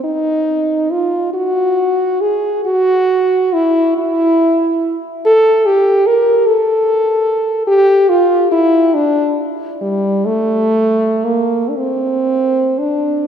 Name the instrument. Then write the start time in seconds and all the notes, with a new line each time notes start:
french horn
0.04 D#4
0.92 F4
1.34 F#4
2.21 G#4
2.65 F#4
3.53 E4
3.98 E4
5.26 A4
5.66 G4
6.06 A#4
6.46 A4
7.67 G4
8.09 F4
8.52 E4
8.94 D4
9.82 G3
10.26 A3
11.24 A#3
11.69 D4
11.76 C4
12.79 D4